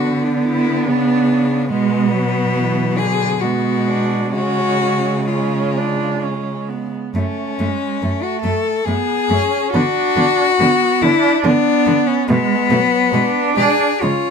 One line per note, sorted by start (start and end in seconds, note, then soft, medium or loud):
0.00 0.89 D3 medium
0.00 1.72 B3 medium
0.00 0.27 F#4 loud
0.07 1.70 B3 medium
0.26 0.47 D4 medium
0.45 0.87 E4 medium
0.86 1.71 C#3 medium
0.86 1.69 D4 medium
1.70 3.41 B2 medium
1.70 2.13 G#3 medium
1.70 2.14 G#3 medium
1.70 3.00 B3 loud
2.12 2.55 F#3 medium
2.12 2.56 F#3 medium
2.54 3.00 E3 medium
2.54 3.44 F#3 medium
2.99 3.44 D3 medium
2.99 3.42 G#4 loud
3.41 4.35 B2 medium
3.41 4.33 G#3 medium
3.41 3.89 B3 medium
3.41 4.32 F#4 medium
3.88 4.34 D4 medium
4.32 6.94 C#3 medium
4.32 6.90 G#3 medium
4.32 5.18 C#4 medium
4.32 5.29 F#4 loud
5.27 5.78 C#4 medium
5.27 6.68 F4 medium
5.77 6.23 D4 medium
6.22 6.70 C#4 medium
6.68 7.14 B3 medium
7.14 7.22 F#2 medium
7.14 7.61 A3 medium
7.14 7.23 A3 medium
7.14 8.24 C#4 loud
7.59 7.67 F#2 medium
7.59 8.02 G#3 medium
7.59 7.67 A3 medium
8.01 8.11 F#2 medium
8.01 8.86 A3 medium
8.01 8.11 A3 soft
8.23 8.41 F#4 medium
8.42 8.52 F#2 medium
8.42 8.52 A3 medium
8.42 8.87 A4 medium
8.85 8.94 F#2 medium
8.85 8.96 A3 medium
8.85 9.32 B3 medium
8.85 9.72 G#4 loud
9.30 9.38 F#2 medium
9.30 9.38 A3 medium
9.30 9.77 C#4 medium
9.73 9.82 D3 medium
9.73 9.82 B3 medium
9.73 10.60 D4 loud
9.73 11.03 F#4 loud
10.16 10.24 D3 medium
10.16 10.24 B3 medium
10.60 10.68 D3 medium
10.60 10.68 B3 medium
10.60 11.05 B3 medium
11.02 11.10 D3 medium
11.02 11.10 B3 medium
11.02 11.49 D4 loud
11.02 11.46 E4 loud
11.44 11.52 D3 medium
11.44 11.52 B3 medium
11.44 12.28 B3 medium
11.44 12.09 D4 loud
11.85 11.95 D3 medium
11.85 11.93 B3 medium
12.07 12.29 C#4 loud
12.28 12.37 B2 medium
12.28 12.72 G#3 medium
12.28 12.36 A3 medium
12.28 13.57 B3 loud
12.70 12.79 B2 medium
12.70 13.14 F#3 medium
12.70 12.78 A3 medium
13.12 13.21 B2 medium
13.12 13.22 G#3 medium
13.12 14.03 D4 loud
13.56 13.65 B2 medium
13.56 13.64 G#3 medium
13.56 14.04 G#4 loud
14.01 14.10 C#3 medium
14.01 14.10 G#3 medium
14.01 14.30 C#4 medium
14.01 14.30 F4 loud